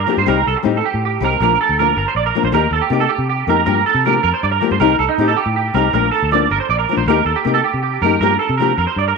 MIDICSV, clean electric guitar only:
0, 0, Header, 1, 3, 480
1, 0, Start_track
1, 0, Key_signature, -2, "major"
1, 0, Tempo, 378072
1, 1784, Time_signature, 12, 3, 24, 8
1, 11651, End_track
2, 0, Start_track
2, 0, Title_t, "Clean electric guitar"
2, 0, Program_c, 0, 27
2, 0, Note_on_c, 0, 70, 65
2, 217, Note_off_c, 0, 70, 0
2, 233, Note_on_c, 0, 72, 70
2, 343, Note_off_c, 0, 72, 0
2, 360, Note_on_c, 0, 70, 94
2, 580, Note_off_c, 0, 70, 0
2, 603, Note_on_c, 0, 69, 92
2, 708, Note_off_c, 0, 69, 0
2, 981, Note_on_c, 0, 69, 79
2, 1077, Note_off_c, 0, 69, 0
2, 1084, Note_on_c, 0, 67, 91
2, 1303, Note_off_c, 0, 67, 0
2, 1336, Note_on_c, 0, 67, 70
2, 1549, Note_off_c, 0, 67, 0
2, 1581, Note_on_c, 0, 70, 92
2, 1792, Note_off_c, 0, 70, 0
2, 1809, Note_on_c, 0, 70, 89
2, 2025, Note_off_c, 0, 70, 0
2, 2041, Note_on_c, 0, 69, 83
2, 2261, Note_off_c, 0, 69, 0
2, 2276, Note_on_c, 0, 70, 77
2, 2495, Note_off_c, 0, 70, 0
2, 2511, Note_on_c, 0, 70, 80
2, 2622, Note_off_c, 0, 70, 0
2, 2640, Note_on_c, 0, 72, 77
2, 2741, Note_off_c, 0, 72, 0
2, 2747, Note_on_c, 0, 74, 79
2, 2860, Note_off_c, 0, 74, 0
2, 2870, Note_on_c, 0, 70, 73
2, 3095, Note_off_c, 0, 70, 0
2, 3105, Note_on_c, 0, 72, 69
2, 3217, Note_off_c, 0, 72, 0
2, 3222, Note_on_c, 0, 70, 94
2, 3452, Note_off_c, 0, 70, 0
2, 3463, Note_on_c, 0, 69, 83
2, 3573, Note_on_c, 0, 67, 76
2, 3578, Note_off_c, 0, 69, 0
2, 3806, Note_off_c, 0, 67, 0
2, 3811, Note_on_c, 0, 69, 81
2, 3922, Note_on_c, 0, 67, 83
2, 3932, Note_off_c, 0, 69, 0
2, 4161, Note_off_c, 0, 67, 0
2, 4182, Note_on_c, 0, 67, 69
2, 4411, Note_off_c, 0, 67, 0
2, 4435, Note_on_c, 0, 70, 89
2, 4633, Note_off_c, 0, 70, 0
2, 4648, Note_on_c, 0, 70, 89
2, 4884, Note_off_c, 0, 70, 0
2, 4901, Note_on_c, 0, 69, 84
2, 5131, Note_off_c, 0, 69, 0
2, 5152, Note_on_c, 0, 70, 76
2, 5356, Note_off_c, 0, 70, 0
2, 5372, Note_on_c, 0, 70, 89
2, 5492, Note_off_c, 0, 70, 0
2, 5506, Note_on_c, 0, 72, 79
2, 5619, Note_off_c, 0, 72, 0
2, 5626, Note_on_c, 0, 74, 76
2, 5727, Note_off_c, 0, 74, 0
2, 5732, Note_on_c, 0, 70, 73
2, 5966, Note_off_c, 0, 70, 0
2, 5988, Note_on_c, 0, 72, 63
2, 6090, Note_off_c, 0, 72, 0
2, 6095, Note_on_c, 0, 70, 99
2, 6327, Note_off_c, 0, 70, 0
2, 6334, Note_on_c, 0, 69, 82
2, 6453, Note_off_c, 0, 69, 0
2, 6456, Note_on_c, 0, 63, 81
2, 6688, Note_off_c, 0, 63, 0
2, 6702, Note_on_c, 0, 69, 89
2, 6811, Note_on_c, 0, 67, 85
2, 6817, Note_off_c, 0, 69, 0
2, 7045, Note_off_c, 0, 67, 0
2, 7061, Note_on_c, 0, 67, 74
2, 7290, Note_off_c, 0, 67, 0
2, 7294, Note_on_c, 0, 70, 85
2, 7527, Note_off_c, 0, 70, 0
2, 7540, Note_on_c, 0, 70, 96
2, 7758, Note_off_c, 0, 70, 0
2, 7763, Note_on_c, 0, 69, 86
2, 8001, Note_off_c, 0, 69, 0
2, 8025, Note_on_c, 0, 74, 75
2, 8252, Note_off_c, 0, 74, 0
2, 8270, Note_on_c, 0, 70, 89
2, 8374, Note_off_c, 0, 70, 0
2, 8379, Note_on_c, 0, 72, 69
2, 8495, Note_off_c, 0, 72, 0
2, 8503, Note_on_c, 0, 74, 85
2, 8610, Note_off_c, 0, 74, 0
2, 8615, Note_on_c, 0, 70, 71
2, 8847, Note_off_c, 0, 70, 0
2, 8856, Note_on_c, 0, 72, 74
2, 8974, Note_off_c, 0, 72, 0
2, 8987, Note_on_c, 0, 70, 106
2, 9210, Note_off_c, 0, 70, 0
2, 9215, Note_on_c, 0, 69, 81
2, 9333, Note_off_c, 0, 69, 0
2, 9342, Note_on_c, 0, 67, 81
2, 9571, Note_off_c, 0, 67, 0
2, 9572, Note_on_c, 0, 69, 92
2, 9691, Note_off_c, 0, 69, 0
2, 9704, Note_on_c, 0, 67, 85
2, 9923, Note_off_c, 0, 67, 0
2, 9938, Note_on_c, 0, 67, 73
2, 10169, Note_off_c, 0, 67, 0
2, 10182, Note_on_c, 0, 70, 90
2, 10406, Note_off_c, 0, 70, 0
2, 10421, Note_on_c, 0, 70, 98
2, 10649, Note_off_c, 0, 70, 0
2, 10654, Note_on_c, 0, 69, 79
2, 10882, Note_off_c, 0, 69, 0
2, 10887, Note_on_c, 0, 70, 77
2, 11123, Note_off_c, 0, 70, 0
2, 11149, Note_on_c, 0, 70, 87
2, 11258, Note_off_c, 0, 70, 0
2, 11263, Note_on_c, 0, 72, 77
2, 11378, Note_off_c, 0, 72, 0
2, 11408, Note_on_c, 0, 74, 80
2, 11511, Note_off_c, 0, 74, 0
2, 11524, Note_on_c, 0, 70, 76
2, 11651, Note_off_c, 0, 70, 0
2, 11651, End_track
3, 0, Start_track
3, 0, Title_t, "Muted clean electric guitar strokes"
3, 726, Note_on_c, 9, 29, 74
3, 853, Note_off_c, 9, 29, 0
3, 11651, End_track
0, 0, End_of_file